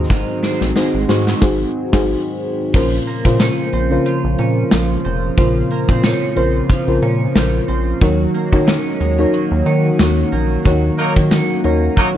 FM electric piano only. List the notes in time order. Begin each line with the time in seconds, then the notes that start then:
Already playing: G#2 D#4 F#4 G#4 C5
0.76 D#4 F#4 G#4 C5
1.08 D#4 F#4 G#4 C5
1.41 D#4 F#4 G#4 C5
1.93 D#4 F#4 G#4 C5
2.74 A#2 C#4 F4 A#4 C5
3.25 C#3 F4 A#4 C5
3.91 C#3 F4 A#4 C5
5.37 A#2 C#3 F4 A#4 C5
6.36 C#3 F4 A#4 C5
6.87 C#3 F4 A#4 C5
8.01 D#3 D#4 F#4 A#4 C#5
8.53 D#4 F#4 A#4 C#5
9.19 D#4 F#4 A#4 C#5
10.65 D#3 D#4 F#4 A#4 C#5
11.64 D#4 F#4 A#4 C#5